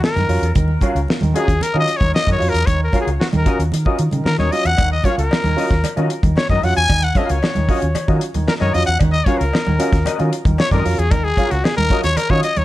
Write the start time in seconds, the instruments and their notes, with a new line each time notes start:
0.00 upright piano C#4 F4, trumpet A#4, snare, muted conga
0.16 fingered electric bass F#2, upright piano D#3, snare, closed hi-hat, muted conga
0.29 fingered electric bass F2, upright piano F#3 C#4 F4, open hi-hat
0.42 fingered electric bass E2, closed hi-hat
0.55 fingered electric bass D#2, upright piano D#3, kick, closed hi-hat, muted conga, low conga
0.68 muted conga
0.81 clean electric guitar C#4 F#4 A#4 F5, upright piano C#4 F4, kick, closed hi-hat, high conga
0.95 fingered electric bass C#2, closed hi-hat
1.08 upright piano C#4 F4, muted clean electric guitar stroke, snare, muted conga
1.21 fingered electric bass D#2, upright piano D#3, muted clean electric guitar stroke, closed hi-hat, muted conga, high conga
1.34 upright piano F#3 C#4 F4, clean electric guitar C#4 F#4 A#4 D#5, trumpet G#4, closed hi-hat
1.48 fingered electric bass D#2, muted clean electric guitar stroke, kick, closed hi-hat
1.61 trumpet A#4, muted clean electric guitar stroke, muted fingered electric bass stroke, closed hi-hat, muted conga, low conga
1.74 fingered electric bass D#3, upright piano F#3 C#4 F4, clean electric guitar C#4 F#4 A#4 D#5
1.80 trumpet D#5
1.87 muted clean electric guitar stroke, closed hi-hat
1.96 trumpet C#5
2.00 fingered electric bass D#2, upright piano D#3, muted clean electric guitar stroke, kick, closed hi-hat, high conga
2.13 upright piano C#4 F4, trumpet D#5, muted clean electric guitar stroke, snare, muted conga
2.27 fingered electric bass F#2, upright piano D#3, clean electric guitar C#4 F#4 A#4 D#5, kick, snare, closed hi-hat
2.32 trumpet C#5
2.39 fingered electric bass F2, upright piano F#3 C#4 F4, muted clean electric guitar stroke, open hi-hat
2.49 trumpet A#4
2.54 fingered electric bass E2, muted clean electric guitar stroke, closed hi-hat
2.66 fingered electric bass D#2, upright piano D#3, trumpet C#5, kick, closed hi-hat, muted conga, low conga
2.80 trumpet A#4, muted conga
2.92 upright piano C#4 F4, clean electric guitar C#4 F#4 A#4 F5, kick, closed hi-hat, high conga
3.01 trumpet G#4
3.07 fingered electric bass C#2, closed hi-hat
3.19 upright piano C#4 F4, trumpet F#4, muted clean electric guitar stroke, snare
3.33 fingered electric bass D#2, upright piano D#3, trumpet A#4, muted clean electric guitar stroke, closed hi-hat, muted conga, high conga
3.46 upright piano F#3 C#4 F4, clean electric guitar C#4 F#4 A#4 D#5, kick, closed hi-hat
3.59 fingered electric bass D#2, muted clean electric guitar stroke, closed hi-hat
3.72 fingered electric bass D#3, muted clean electric guitar stroke, closed hi-hat, muted conga, low conga
3.85 upright piano F#3 C#4 F4, clean electric guitar C#4 F#4 A#4 D#5, kick, muted conga
3.99 fingered electric bass D#3, muted clean electric guitar stroke, closed hi-hat
4.11 fingered electric bass C#3, upright piano D#3, muted clean electric guitar stroke, closed hi-hat, high conga
4.25 fingered electric bass D#3, upright piano C#4 F4, trumpet A#4, muted clean electric guitar stroke, snare
4.38 fingered electric bass D#2, upright piano D#3, clean electric guitar C#4 F#4 A#4 D#5, trumpet C#5, snare, muted conga, high conga
4.52 upright piano F#3 C#4 F4, trumpet D#5, muted clean electric guitar stroke, open hi-hat
4.65 fingered electric bass E2, trumpet F#5, muted clean electric guitar stroke, closed hi-hat
4.78 fingered electric bass D#2, upright piano D#3, kick, closed hi-hat, cowbell, muted conga, low conga
4.92 trumpet D#5, muted conga
5.03 clean electric guitar C#4 F#4 A#4 F5, upright piano C#4 F4, trumpet C#5, kick, closed hi-hat, high conga
5.18 fingered electric bass C#2, trumpet A#4, closed hi-hat
5.31 upright piano C#4 F4, muted clean electric guitar stroke, snare, cowbell, muted conga
5.43 fingered electric bass D#2, upright piano D#3, muted clean electric guitar stroke, closed hi-hat, muted conga, high conga
5.56 upright piano F#3 C#4 F4, clean electric guitar C#4 F#4 A#4 D#5, open hi-hat
5.71 fingered electric bass D#2, muted clean electric guitar stroke, kick, snare, closed hi-hat
5.84 muted clean electric guitar stroke, muted fingered electric bass stroke, closed hi-hat, cowbell, muted conga, low conga
5.96 fingered electric bass D#3, upright piano F#3 C#4 F4, clean electric guitar C#4 F#4 A#4 D#5, closed hi-hat, muted conga
6.10 muted clean electric guitar stroke, closed hi-hat
6.23 fingered electric bass D#2, upright piano D#3, muted clean electric guitar stroke, kick, closed hi-hat, high conga
6.36 upright piano C#4 F4, trumpet C#5, muted clean electric guitar stroke, snare, cowbell, muted conga
6.49 fingered electric bass F#2, upright piano D#3, clean electric guitar C#4 F#4 A#4 D#5, trumpet D#5, kick, snare, closed hi-hat, muted conga
6.63 fingered electric bass F2, upright piano F#3 C#4 F4, trumpet F#5, muted clean electric guitar stroke, open hi-hat
6.76 fingered electric bass E2, trumpet G#5, muted clean electric guitar stroke, closed hi-hat
6.89 fingered electric bass D#2, upright piano D#3, kick, closed hi-hat, cowbell, low conga
7.02 trumpet F#5, closed hi-hat, muted conga
7.15 upright piano C#4 F4, clean electric guitar C#4 F#4 A#4 F5, trumpet D#5, kick, closed hi-hat, high conga
7.29 fingered electric bass C#2, trumpet C#5, closed hi-hat
7.42 upright piano C#4 F4, muted clean electric guitar stroke, snare, cowbell, muted conga
7.55 fingered electric bass D#2, upright piano D#3, muted clean electric guitar stroke, closed hi-hat, high conga
7.68 upright piano F#3 C#4 F4, clean electric guitar C#4 F#4 A#4 D#5, kick, open hi-hat
7.82 fingered electric bass D#2, muted clean electric guitar stroke, closed hi-hat
7.95 muted clean electric guitar stroke, muted fingered electric bass stroke, closed hi-hat, cowbell, low conga
8.08 fingered electric bass D#3, upright piano F#3 C#4 F4, clean electric guitar C#4 F#4 A#4 D#5, kick, closed hi-hat, muted conga
8.21 muted clean electric guitar stroke, closed hi-hat
8.34 fingered electric bass D#2, upright piano D#3, muted clean electric guitar stroke, closed hi-hat, high conga
8.47 upright piano C#4 F4, trumpet A#4, muted clean electric guitar stroke, snare, cowbell
8.60 fingered electric bass F#2, upright piano D#3, clean electric guitar C#4 F#4 A#4 D#5, trumpet C#5, snare, muted conga
8.74 fingered electric bass F2, upright piano F#3 C#4 F4, trumpet D#5, muted clean electric guitar stroke, open hi-hat
8.86 fingered electric bass E2, trumpet F#5, muted clean electric guitar stroke, closed hi-hat
8.99 fingered electric bass D#2, upright piano D#3, kick, closed hi-hat, cowbell, muted conga, low conga
9.12 trumpet D#5, closed hi-hat, muted conga
9.25 clean electric guitar C#4 F#4 A#4 F5, upright piano C#4 F4, trumpet C#5, kick, closed hi-hat, high conga
9.38 fingered electric bass C#2, trumpet A#4, closed hi-hat
9.53 upright piano C#4 F4, muted clean electric guitar stroke, snare, cowbell
9.66 fingered electric bass D#2, upright piano D#3, muted clean electric guitar stroke, muted conga, high conga
9.79 upright piano F#3 C#4 F4, clean electric guitar C#4 F#4 A#4 D#5, closed hi-hat
9.92 fingered electric bass D#2, muted clean electric guitar stroke, kick, snare, closed hi-hat
10.05 clean electric guitar C#4 F#4 A#4 D#5, muted fingered electric bass stroke, closed hi-hat, cowbell, muted conga, low conga
10.18 fingered electric bass D#3, upright piano F#3 C#4 F4, closed hi-hat, muted conga
10.32 muted clean electric guitar stroke, closed hi-hat
10.45 fingered electric bass D#2, upright piano D#3, muted clean electric guitar stroke, kick, closed hi-hat, high conga
10.58 upright piano C#4 F4, trumpet C#5, muted clean electric guitar stroke, snare, cowbell, muted conga
10.71 fingered electric bass F#2, upright piano D#3, clean electric guitar C#4 F#4 A#4 D#5, trumpet A#4, kick, snare, closed hi-hat
10.84 fingered electric bass F2, upright piano F#3 C#4 F4, muted clean electric guitar stroke, open hi-hat
10.98 fingered electric bass E2, trumpet G#4, muted clean electric guitar stroke, closed hi-hat
11.11 fingered electric bass D#2, upright piano D#3, trumpet A#4, kick, closed hi-hat, cowbell, muted conga, low conga
11.24 trumpet G#4, muted conga
11.37 upright piano C#4 F4, clean electric guitar C#4 F#4 A#4 F5, kick, closed hi-hat, high conga
11.51 fingered electric bass C#2, trumpet F#4, closed hi-hat
11.63 upright piano C#4 F4, trumpet G#4, muted clean electric guitar stroke, snare, cowbell
11.77 fingered electric bass D#2, upright piano D#3, trumpet A#4, muted clean electric guitar stroke, closed hi-hat, muted conga, high conga
11.90 upright piano F#3 C#4 F4, clean electric guitar C#4 F#4 A#4 D#5, kick, closed hi-hat
12.04 fingered electric bass D#2, trumpet C#5, muted clean electric guitar stroke, snare, closed hi-hat
12.17 trumpet A#4, muted clean electric guitar stroke, muted fingered electric bass stroke, closed hi-hat, cowbell, low conga
12.30 fingered electric bass D#3, upright piano F#3 C#4 F4, clean electric guitar C#4 F#4 A#4 D#5, trumpet C#5, kick, muted conga
12.43 trumpet D#5, muted clean electric guitar stroke, closed hi-hat
12.56 fingered electric bass D#2, upright piano D#3, trumpet C#5, muted clean electric guitar stroke, closed hi-hat, high conga